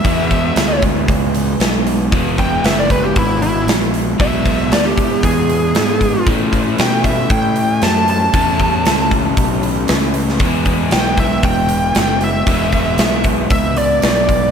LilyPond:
<<
  \new Staff \with { instrumentName = "Lead electric guitar" } { \time 4/4 \key e \mixolydian \tempo 4 = 116 e''4. r2 r8 | r8 g''8 e''16 d''16 b'16 g'16 e'8 e'8 r4 | e''4 d''16 g'8. gis'2 | r4 g''8 e''8 g''4 a''8 a''8~ |
a''4. r2 r8 | r4 g''8 e''8 g''4 g''8 e''8~ | e''4. r8 e''8 d''8 d''4 | }
  \new Staff \with { instrumentName = "Overdriven electric guitar" } { \time 4/4 \key e \mixolydian <e gis b e'>1 | <e gis b e'>1 | <e gis b e'>1 | <a, e a cis' e'>1 |
<a, e a cis' e'>1 | <e gis b e'>1 | <e gis b e'>1 | }
  \new Staff \with { instrumentName = "Fingered electric bass" } { \clef bass \time 4/4 \key e \mixolydian e,4 d,4 cis,4 b,,4 | e,,4 fis,,4 gis,,4 ais,,4 | b,,4 d,8 r8 e,4 gis,4 | a,4 b,4 a,4 fis,4 |
e,4 cis,4 b,,4 cis,4 | e,4 b,,4 e,,4 fis,,4 | e,,4 b,,4 cis,4 b,,4 | }
  \new DrumStaff \with { instrumentName = "Drums" } \drummode { \time 4/4 <hho bd>8 <hho bd>8 <hho sn>8 <hho bd>8 <hho bd>8 hho8 <hho sn>8 hho8 | <hho bd>8 <hho bd>8 <hho sn>8 <hho bd>8 <hho bd>8 hho8 <hho sn>8 hho8 | <hho bd>8 <hho bd>8 <hho sn>8 <hho bd>8 <hho bd>8 hho8 <hho sn>8 <hho bd>8 | <hho bd>8 <hho bd>8 <hho sn>8 <hho bd>8 <hho bd>8 hho8 <hho sn>8 hho8 |
<hho bd>8 <hho bd>8 <hho sn>8 <hho bd>8 <hho bd>8 hho8 <hho sn>8 hho16 sn16 | <hho bd>8 <hho bd>8 <hho sn>8 <hho bd>8 <hho bd>8 hho8 <hho sn>8 hho8 | <hho bd>8 <hho bd>8 <hho sn>8 <hho bd>8 <hho bd>8 hho8 <hho sn>8 <hho bd>8 | }
>>